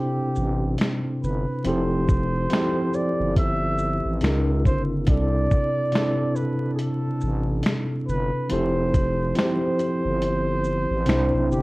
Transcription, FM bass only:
0.38 0.77 A1 medium
1.24 1.46 G1 medium
1.66 2.47 F1 loud
3.20 4.01 G1 medium
4.05 4.21 A1 medium
4.23 4.67 C#2 medium
4.66 5.10 G1 medium
5.08 5.48 C2 loud
7.24 7.62 A1 medium
8.09 8.32 G1 medium
8.52 9.33 F1 loud
10.05 10.87 G1 medium
10.91 11.07 A1 medium
11.09 11.31 C2 loud
11.34 11.50 B1 medium
11.51 11.62 G1 loud

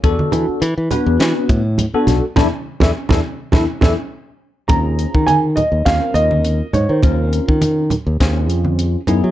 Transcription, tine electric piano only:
0.04 0.62 B3 medium
0.04 0.62 D4 medium
0.04 0.62 F#4 medium
0.04 0.63 A4 loud
0.91 1.61 B3 medium
0.91 1.61 D4 medium
0.91 1.61 F#4 medium
0.91 1.61 B4 medium
1.94 2.24 B3 medium
1.94 2.24 D4 medium
1.94 2.24 F#4 medium
1.94 2.23 A4 medium
2.37 2.47 D4 loud
2.37 2.47 E4 loud
2.37 2.47 A4 medium
2.81 2.90 D4 medium
2.81 2.90 E4 loud
2.81 2.90 A4 medium
3.11 3.19 D4 medium
3.11 3.19 E4 medium
3.11 3.19 A4 medium
3.53 3.63 D4 medium
3.53 3.63 E4 medium
3.53 3.63 A4 medium
3.83 3.93 D4 loud
3.83 3.93 E4 medium
3.83 3.93 A4 medium
4.69 5.49 C4 medium
4.69 5.49 C#4 medium
4.69 5.49 F4 medium
4.69 5.49 G#4 medium
5.86 6.66 C4 medium
5.86 6.66 C#4 medium
5.86 6.66 F4 medium
5.86 6.66 A#4 medium
7.03 7.83 C4 medium
7.03 7.83 C#4 medium
7.03 7.83 F4 medium
7.03 7.83 A#4 medium
8.20 9.00 C4 medium
8.20 9.00 C#4 medium
8.20 9.00 F4 medium
8.20 9.00 G#4 medium
9.08 9.31 B3 medium
9.08 9.31 D#4 medium
9.08 9.31 E4 medium
9.08 9.31 G#4 medium

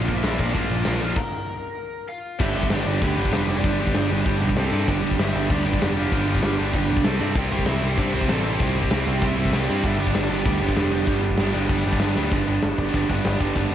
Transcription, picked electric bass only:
0.08 0.20 A#1 medium
0.23 0.36 A#1 medium
0.39 0.51 A#1 medium
0.55 0.67 A#1 medium
0.70 0.82 A#1 medium
0.86 0.98 A#1 loud
1.02 1.14 A#1 medium
2.40 2.54 G1 loud
2.56 2.70 G1 medium
2.72 2.85 G1 medium
2.87 3.01 G1 medium
3.02 3.16 D2 medium
3.18 3.32 G1 medium
3.34 3.61 F1 loud
3.64 3.91 G1 loud
3.95 4.09 G1 medium
4.11 4.25 G1 medium
4.26 4.40 G1 medium
4.43 4.56 B1 medium
4.57 4.71 C2 loud
4.72 4.86 G2 loud
4.88 5.02 G1 loud
5.04 5.18 G1 medium
5.19 5.33 G1 medium
5.35 5.48 G1 medium
5.50 5.64 D2 loud
5.66 5.80 G1 medium
5.82 6.09 F1 loud
6.12 6.40 G1 loud
6.43 6.57 G1 medium
6.60 6.73 G1 medium
6.74 6.88 G1 loud
6.90 7.03 B1 loud
7.04 7.18 C2 medium
7.20 7.34 G2 loud
7.35 7.49 C2 loud
7.51 7.65 C2 medium
7.67 7.81 C2 medium
7.82 7.96 C2 medium
7.97 8.11 G2 loud
8.14 8.27 C2 medium
8.28 8.56 A1 loud
8.60 8.88 C2 loud
8.91 9.04 C2 medium
9.07 9.20 C2 medium
9.22 9.36 C2 loud
9.38 9.51 C2 medium
9.54 9.67 C2 loud
9.70 9.83 G2 loud
9.84 9.97 G1 loud
10.00 10.14 G1 medium
10.15 10.28 G1 medium
10.31 10.44 G1 medium
10.46 10.59 D2 medium
10.61 10.75 G1 loud
10.76 11.04 F1 loud
11.07 11.35 G1 loud
11.38 11.52 G1 medium
11.55 11.68 G1 medium
11.69 11.83 G1 loud
11.86 11.99 G1 loud
12.01 12.14 G1 loud
12.16 12.30 D2 medium
12.32 12.41 G1 loud
12.48 12.57 G1 medium
12.63 12.73 G1 medium
12.78 12.88 G1 medium
12.94 13.04 G1 loud
13.10 13.19 G1 loud
13.26 13.35 G1 loud
13.41 13.50 G1 medium
13.56 13.65 G1 loud
13.72 13.75 G1 medium

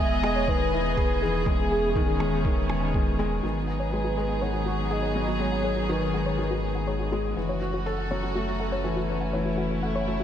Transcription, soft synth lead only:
0.00 0.25 E5 loud
0.24 0.37 D#5 loud
0.35 0.50 C#5 loud
0.49 1.24 B4 loud
1.22 2.94 G#4 medium
3.43 4.43 B4 medium
4.42 4.94 F#5 loud
4.92 5.43 D#5 loud
5.41 5.91 C#5 loud
5.90 7.13 B4 medium

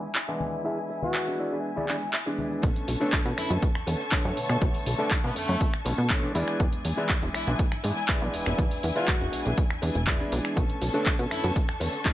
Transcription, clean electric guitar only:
0.15 muted clean electric guitar stroke medium
0.28 muted clean electric guitar stroke soft
0.52 muted clean electric guitar stroke soft
0.65 0.77 E4 loud
0.65 0.78 G#4 loud
0.65 0.78 E5 loud
0.90 muted clean electric guitar stroke medium
1.02 muted clean electric guitar stroke soft
1.39 1.58 E4 medium
1.39 1.58 G#4 medium
1.39 1.58 D5 medium
1.76 1.88 E4 loud
1.76 1.95 G#4 loud
1.76 1.95 D5 loud
1.89 2.12 G#5 medium
2.13 2.16 E5 medium
2.13 muted clean electric guitar stroke medium
2.26 muted clean electric guitar stroke soft
2.51 muted clean electric guitar stroke soft
2.63 muted clean electric guitar stroke loud
2.75 muted clean electric guitar stroke soft
3.00 3.19 D4 medium
3.00 3.19 A4 medium
3.00 3.19 B4 medium
3.00 3.19 C#5 medium
3.37 muted clean electric guitar stroke medium
3.50 muted clean electric guitar stroke soft
3.87 muted clean electric guitar stroke loud
3.99 muted clean electric guitar stroke soft
4.11 4.37 D4 medium
4.11 4.37 A4 medium
4.11 4.37 B4 medium
4.11 4.37 C#5 loud
4.61 muted clean electric guitar stroke loud
4.74 muted clean electric guitar stroke soft
4.98 5.17 D4 medium
4.98 5.17 A4 medium
4.98 5.17 B4 medium
4.98 5.18 D5 medium
5.35 muted clean electric guitar stroke loud
5.48 muted clean electric guitar stroke soft
5.85 muted clean electric guitar stroke loud
5.98 muted clean electric guitar stroke soft
6.10 6.34 D4 medium
6.10 6.35 A4 medium
6.10 6.34 B4 medium
6.10 6.35 C#5 loud
6.35 6.65 E4 loud
6.35 6.65 G#4 medium
6.35 6.65 B4 medium
6.35 6.65 D5 loud
6.72 muted clean electric guitar stroke soft
6.97 7.16 E4 medium
6.97 7.16 G#4 medium
6.97 7.16 B4 medium
6.97 7.16 D5 medium
7.34 muted clean electric guitar stroke medium
7.47 muted clean electric guitar stroke soft
7.59 muted clean electric guitar stroke soft
7.84 muted clean electric guitar stroke loud
7.96 muted clean electric guitar stroke soft
8.09 8.33 E4 medium
8.09 8.34 G#4 medium
8.09 8.34 B4 medium
8.09 8.34 D5 loud
8.58 muted clean electric guitar stroke loud
8.71 muted clean electric guitar stroke soft
8.96 9.14 E4 medium
8.96 9.14 G#4 medium
8.96 9.14 B4 medium
8.96 9.15 D5 medium
9.32 muted clean electric guitar stroke medium
9.45 muted clean electric guitar stroke soft
9.82 muted clean electric guitar stroke loud
9.95 muted clean electric guitar stroke soft
10.07 10.32 E4 medium
10.07 10.32 G#4 medium
10.07 10.32 B4 medium
10.07 10.32 D5 loud
10.56 muted clean electric guitar stroke loud
10.69 muted clean electric guitar stroke soft
10.94 11.12 D4 medium
10.94 11.13 A4 medium
10.94 11.13 B4 medium
10.94 11.13 C#5 medium
11.31 muted clean electric guitar stroke loud
11.43 muted clean electric guitar stroke soft
11.80 muted clean electric guitar stroke loud
11.93 muted clean electric guitar stroke soft
12.05 12.13 D4 medium
12.05 12.13 A4 medium
12.05 12.13 B4 medium
12.05 12.13 D5 loud

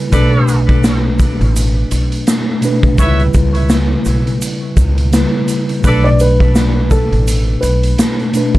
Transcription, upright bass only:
0.13 1.37 B1 loud
1.41 1.83 A1 medium
1.92 2.21 B1 medium
2.98 3.28 C#2 loud
3.35 3.94 C#2 loud
4.06 4.35 B1 medium
4.77 5.24 C#2 medium
5.84 7.08 B1 loud
7.12 7.54 A1 medium
7.63 7.92 B1 medium

